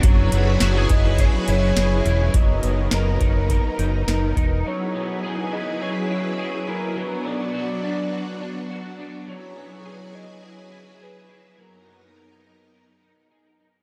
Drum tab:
HH |xxxxxxxx|xxxxxxxx|--------|--------|
SD |--o---o-|--o---o-|--------|--------|
BD |o--oo---|o--oo--o|--------|--------|

HH |--------|--------|
SD |--------|--------|
BD |--------|--------|